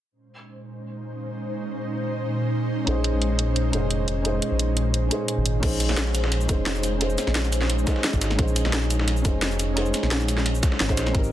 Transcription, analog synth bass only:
2.87 A#1
3.13 A#1
3.73 F1
4.51 A#1
5.38 G#1
5.63 A#1
5.89 A#1
7.27 A#1
8.13 G#1
8.39 A#1
8.65 A#1
9.25 F1
10.03 A#1
10.80 G#1
10.97 A#1
11.15 G#1

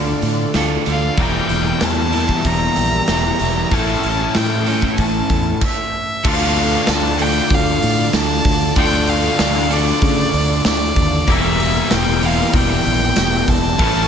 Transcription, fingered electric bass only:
Already playing: D2
0.22 A2
0.55 D2
0.87 D2
1.17 E1
1.50 E1
1.81 E2
2.45 E1
2.77 A#1
3.09 E1
3.41 E1
3.72 A1
4.04 A1
4.36 A2
4.98 A1
5.30 E2
6.25 D2
6.88 D2
7.51 D2
7.83 A2
8.13 D2
8.45 D2
8.76 D2
9.40 D2
10.02 C#3
10.34 D2
10.66 D2
10.96 D#2
11.28 E1
11.92 E1
12.54 E1
12.86 A#1
13.18 E1
13.48 E1
13.80 A1

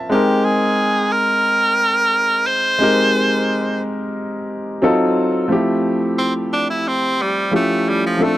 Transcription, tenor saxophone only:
0.12 G4
0.45 G#4
1.12 A#4
2.47 C5
6.18 C4
6.53 D4
6.70 E4
6.88 C4
7.22 G3
7.55 A3
7.89 G3
8.06 F3
8.24 A3

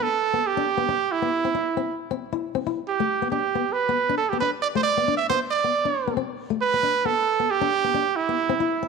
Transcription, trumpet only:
0.03 A4
0.47 G4
1.12 E4
2.88 G4
3.31 G4
3.73 B4
4.17 A4
4.29 G4
4.40 B4
4.62 D5
4.76 C5
4.83 D5
5.17 E5
5.29 C5
5.50 D5
6.62 B4
7.06 A4
7.51 G4
8.16 E4

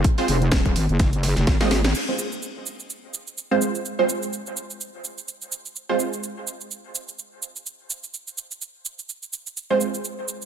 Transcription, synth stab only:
0.18 G#3 C4 F4 C5
1.61 G#3 C4 F4 D#5
2.08 G#3 C4 F4 C5
3.51 G#3 C4 F4 C5
3.99 G#3 C4 F4 C5
5.89 G#3 C4 F4 C5
9.70 G#3 C4 F4 C5

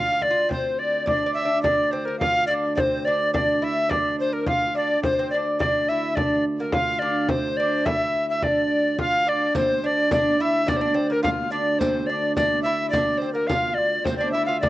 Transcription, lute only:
Already playing: D4 F4
0.12 F4
0.31 F4
0.49 C4
1.06 D4
1.26 D4
1.45 D4
1.64 D4
1.93 C4
2.08 A#3
2.22 F4
2.51 D4
2.78 C4
3.07 D4
3.34 D4
3.62 E4
3.89 D4
4.47 F4
4.75 D4
5.05 C4
5.13 C4
5.19 C4
5.34 D4
5.62 D4
5.90 E4
6.17 D4
6.60 A#3
6.73 F4
7.02 D4
7.30 C4
7.60 D4
7.87 E4
8.42 D4
8.99 F4
9.27 D4
9.55 C4
9.84 D4
10.11 D4
10.40 E4
10.66 D4
10.81 D4
10.94 C4
11.10 A#3
11.23 F4
11.52 D4
11.81 C4
12.09 D4
12.37 D4
12.66 E4
12.95 D4
13.22 C4
13.35 A#3
13.50 F4
14.07 C4
14.21 D4
14.34 E4
14.48 F4
14.63 D4

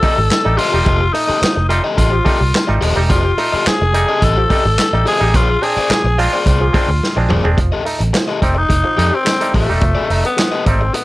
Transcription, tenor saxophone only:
Already playing: A4
0.58 F4
1.13 D#4
1.69 F4
1.97 F4
3.10 F4
3.67 G#4
4.24 A4
5.08 G#4
5.36 F4
5.63 G#4
6.20 F4
6.48 F4
8.43 C4
8.58 D#4
9.15 C4
9.55 A3
10.26 B3
10.66 C4
10.94 B3

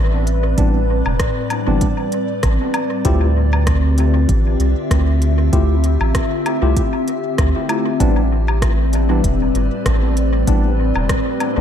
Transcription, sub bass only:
Already playing: A1
0.58 A1
1.06 E1
1.67 G1
2.43 A1
3.05 D2
4.29 A1
4.60 C2
4.91 D2
5.53 D2
6.01 A1
6.62 C2
7.38 D2
8.00 A1
9.24 E1
9.55 G1
9.86 A1
10.47 A1
10.95 E1
11.57 G1

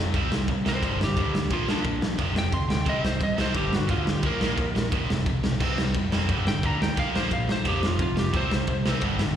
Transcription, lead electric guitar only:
0.69 C5
1.04 G4
1.53 F4
1.70 D4
2.38 G5
2.54 C6
2.71 G5
2.89 D#5
3.06 C5
3.23 D#5
3.41 C5
3.56 G4
3.75 F#4
3.91 F4
4.09 G4
4.26 A#4
6.48 G5
6.65 A#5
6.83 G5
6.99 F5
7.16 C5
7.33 F5
7.52 C5
7.68 G4
7.86 F4
8.02 F4
8.19 G4
8.37 C5

